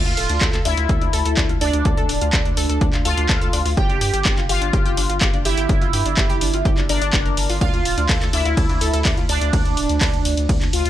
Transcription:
Already playing: F4 F5
0.06 D2 F4 F5, closed hi-hat
0.17 D1 A4 A5, open hi-hat
0.29 D2 D4 D5, closed hi-hat
0.41 D2 A4 A5, kick, clap, closed hi-hat
0.53 D2 A4 A5, clap, closed hi-hat
0.65 D2 D4 E4 D5 E5, open hi-hat
0.77 D2 F4 F5, closed hi-hat
0.89 D2 A4 A5, kick, closed hi-hat
1.02 D2 D4 D5, closed hi-hat
1.13 D2 A4 A5, open hi-hat
1.25 D2 A4 A5, closed hi-hat
1.37 D2 D4 D5, kick, clap, closed hi-hat
1.49 D2 F4 F5, closed hi-hat
1.61 D2 D4 A4 D5 A5, open hi-hat
1.73 D2 D4 D5, closed hi-hat
1.85 D2 A4 A5, kick, closed hi-hat
1.97 D2 A4 A5, closed hi-hat
2.09 D1 D4 D5, open hi-hat
2.21 D2 F4 F5, closed hi-hat
2.33 D2 A4 A5, kick, clap, closed hi-hat
2.45 D2 D4 D5, closed hi-hat
2.57 D2 A4 A5, open hi-hat
2.69 D2 A4 A5, closed hi-hat
2.81 D2 D4 D5, kick, closed hi-hat
2.93 D2 F4 F5, clap, closed hi-hat
3.05 D2 F4 A4 F5 A5, open hi-hat
3.17 D2 D4 D5, closed hi-hat
3.29 D2 A4 A5, kick, clap, closed hi-hat
3.41 D2 A4 A5, closed hi-hat
3.53 D2 D4 D5, open hi-hat
3.65 D2 F4 F5, open hi-hat
3.77 G1 G4 G5, kick, closed hi-hat
3.89 G1 D4 D5, closed hi-hat
4.01 G2 G4 G5, open hi-hat
4.13 G1 G4 G5, closed hi-hat
4.25 G1 D4 D5, kick, clap, closed hi-hat
4.37 G1 F4 F5, clap, closed hi-hat
4.49 G1 F4 G4 F5 G5, open hi-hat
4.61 G1 D4 D5, closed hi-hat
4.73 G1 G4 G5, kick, closed hi-hat
4.85 G1 G4 G5, closed hi-hat
4.97 G1 D4 D5, open hi-hat
5.10 G1 F4 F5, closed hi-hat
5.21 G1 G4 G5, kick, clap, closed hi-hat
5.34 G1 D4 D5, closed hi-hat
5.45 G1 E4 G4 E5 G5, open hi-hat
5.58 G1 G4 G5, closed hi-hat
5.69 G1 D4 D5, kick, closed hi-hat
5.82 G1 F4 F5, closed hi-hat
5.93 G2 G4 G5, open hi-hat
6.06 G1 D4 D5, closed hi-hat
6.17 G1 G4 G5, kick, clap, closed hi-hat
6.30 G1 G4 G5, closed hi-hat
6.41 G1 D4 D5, open hi-hat
6.54 G1 F4 F5, closed hi-hat
6.65 G1 G4 G5, kick, closed hi-hat
6.78 G1 D4 D5, clap, closed hi-hat
6.89 G1 D4 A#4 D5 A#5, open hi-hat
7.02 G1 D4 D5, closed hi-hat
7.13 F1 D4, kick, clap, closed hi-hat
7.26 G1 A#4 A#5, closed hi-hat
7.37 G1 A#4 A#5, open hi-hat
7.50 G1 F4 F5, open hi-hat
7.61 D2 D4 F4 D5 F5, kick, ride
7.74 D2 F4 F5, closed hi-hat
7.85 D1 A5 A6, open hi-hat
7.97 D2 D4 D5, closed hi-hat
8.09 D2 A4 A5, kick, clap, closed hi-hat, ride
8.21 D2 A4 A5, clap, closed hi-hat
8.33 D2 D4 E4 D5 E5, open hi-hat
8.45 D2 F4 F5, closed hi-hat
8.57 D2 A5 A6, kick, closed hi-hat, ride
8.69 D2 D4 D5, closed hi-hat
8.81 D2 A4 A5, open hi-hat
8.93 D2 A4 A5, closed hi-hat
9.05 D2 D4 D5, kick, clap, closed hi-hat, ride
9.17 D2 F4 F5, closed hi-hat
9.29 D2 D4 D5 A5 A6, open hi-hat
9.41 D2 D4 D5, closed hi-hat
9.53 D2, kick, closed hi-hat, ride
9.65 D2, closed hi-hat
9.77 D1, open hi-hat
9.89 D2, closed hi-hat
10.01 D2, kick, clap, closed hi-hat, ride
10.14 D2, closed hi-hat
10.25 D2, open hi-hat
10.37 D2, closed hi-hat
10.49 D2, kick, closed hi-hat, ride
10.62 D2, clap, closed hi-hat
10.73 D2 F4, open hi-hat
10.85 D2, closed hi-hat

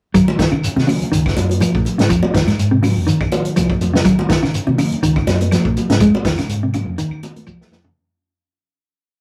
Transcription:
0.14 D#2 F#3, kick, closed hi-hat, claves, shekere
0.28 high conga
0.39 D#3, kick, snare, closed hi-hat, shekere
0.51 D#2 C#3, claves
0.64 closed hi-hat, shekere
0.76 D#2 C3, snare, high conga
0.87 C#3, open hi-hat, high conga, low conga, claves, shekere
1.02 closed hi-hat
1.12 C#2 D#3, closed hi-hat, shekere
1.26 kick, snare, claves
1.37 F#2, closed hi-hat, high conga, shekere
1.49 closed hi-hat, high conga
1.60 F3, closed hi-hat, high conga, claves, shekere
1.75 A#1, kick
1.85 muted fingered electric bass stroke, closed hi-hat, low conga, shekere
1.98 G#2 C#3, snare, closed hi-hat
2.09 F2 F3, kick, closed hi-hat, claves, shekere
2.23 muted fingered electric bass stroke, high conga
2.34 F2 D#3, kick, snare, closed hi-hat, shekere
2.47 G#2, snare, closed hi-hat, claves
2.59 G#2, closed hi-hat, shekere
2.71 C3
2.83 C#3, open hi-hat, high conga, low conga, claves, shekere
2.96 F2
3.07 D#3, closed hi-hat, shekere
3.21 D#2, kick, claves
3.31 closed hi-hat, high conga, low conga, shekere
3.45 closed hi-hat
3.56 C2 F3, closed hi-hat, high conga, claves, shekere
3.70 muted fingered electric bass stroke, kick
3.81 F2, closed hi-hat, high conga, low conga, shekere
3.94 C#3, snare
4.05 D#2 F#3, kick, closed hi-hat, claves, shekere
4.19 high conga
4.29 D#3, kick, snare, closed hi-hat, shekere
4.43 D#2 C#3, snare, claves
4.54 closed hi-hat, shekere
4.66 D#2 C3, high conga
4.78 C#3, open hi-hat, high conga, low conga, claves, shekere
4.92 closed hi-hat
5.02 C#2 D#3, closed hi-hat, shekere
5.16 kick, claves
5.27 F#2, snare, closed hi-hat, high conga, low conga, shekere
5.41 closed hi-hat, high conga
5.51 F3, snare, closed hi-hat, high conga, claves, shekere
5.65 A#1, kick
5.76 muted fingered electric bass stroke, closed hi-hat, high conga, low conga, shekere
5.89 G#2 C#3, snare, closed hi-hat
6.00 F2 G#3, kick, closed hi-hat, claves, shekere
6.15 high conga
6.25 F2 D#3, kick, snare, closed hi-hat, shekere
6.38 C#3, snare, closed hi-hat, claves
6.49 G#2, closed hi-hat, shekere
6.63 C3
6.73 C#3, closed hi-hat, high conga, low conga, claves, shekere
6.86 F2
6.98 D#3, closed hi-hat, shekere
7.10 D#2, claves
7.23 closed hi-hat, high conga, shekere
7.36 closed hi-hat, high conga
7.46 C2 F3, high tom, high conga, claves, shekere
7.60 muted fingered electric bass stroke, snare
7.71 F2, snare, high conga, low conga, shekere
7.84 C#3, floor tom

